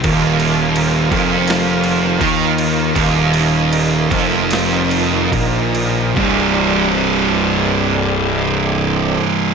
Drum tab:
CC |x-x-x-x-x-x-x-x-|x-x-x-x-x-x-x-x-|----------------|
SD |--------o-------|-------oo-------|----------------|
BD |o-----o-----o---|o-----o-----o---|o---------------|